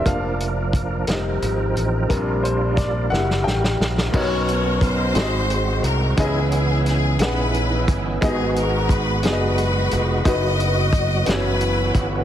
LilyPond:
<<
  \new Staff \with { instrumentName = "String section" } { \time 6/8 \key bes \major \tempo 4. = 59 << { r2. | r2. | \key b \major cis''4 c''4. ais'8 | gis'8 gis'8 gis'8 b'4 r8 |
gis'8 ais'8 b'8 b'4. | dis''4. b'4 r8 | } \\ { r2. | r2. | <fis' ais'>4 <dis' fis'>4. r8 | <b e'>4. <dis' e'>4. |
<b dis'>4. <dis' fis'>4. | <fis' b'>4. e'4. | } >> }
  \new Staff \with { instrumentName = "Upright piano" } { \time 6/8 \key bes \major f''4. r4. | bes'8 c''8 d''8 ges''8 g''4 | \key b \major <b dis' fis' ais' cis''>4 r8 <bis dis' fis' gis' d'' dis''>4 r8 | <cis' dis' e' gis' b' dis''>4 r8 <e cis' dis' gis' b' fis''>4 r8 |
<b dis' fis' gis' dis''>4 r8 <b dis' fis' gis' d'' dis''>4 r8 | <dis' fis' b'>4 r8 <b cis' e' fis' cis''>4 r8 | }
  \new Staff \with { instrumentName = "Upright piano" } { \clef bass \time 6/8 \key bes \major <f bes d'>4. <g bes ees'>8 r4 | <g c' d'>4. <g bes fes'>4. | \key b \major b,4. gis,4. | cis4. r4. |
gis,4. r4. | r2. | }
  \new Staff \with { instrumentName = "Tonewheel organ" } { \time 6/8 \key bes \major << { bes'4. bes'4.~ | bes'2. | \key b \major ais'4. fis'4. | e2. |
fis'2.~ | fis'2. | } \\ { <bes d'>4. <c' ees'>4. | <d' f'>4. <fes' ges'>4. | <b, cis'>4. <gis bis>4. | <b cis'>2. |
gis2. | fis4. cis'4. | } >> }
  \new Staff \with { instrumentName = "Tonewheel organ" } { \clef bass \time 6/8 \key bes \major f2. | g2. | \key b \major r2. | r2. |
r2. | r4. e4. | }
  \new Staff \with { instrumentName = "Fingered electric bass" } { \clef bass \time 6/8 \key bes \major f,,4. f,,8 aes,,8 a,,8 | bes,,4. ges,,8 a,,8 bes,,8 | \key b \major b,,4. gis,,4 bis,,8 | cis,4. ais,,4 g,,8 |
gis,,4. fis,,4 eis,,8 | fis,,4. fis,,4 g,,8 | }
  \new DrumStaff \with { instrumentName = "Drums" } \drummode { \time 6/8 <hh bd>8 hh8 <hh bd>8 <hh sn>8 hh8 hh8 | <hh bd>8 hh8 <hh bd sn>8 sn16 sn16 sn16 sn16 sn16 sn16 | <cymc bd>8 hh8 <hh bd>8 <hh sn>8 hh8 hh8 | <hh bd>8 hh8 <hh sn>8 <hh sn>8 hh8 <hh bd>8 |
<hh bd>8 hh8 <hh bd>8 <hh sn>8 hh8 hh8 | <hh bd>8 hh8 <hh bd>8 <hh sn>8 hh8 <hh bd>8 | }
>>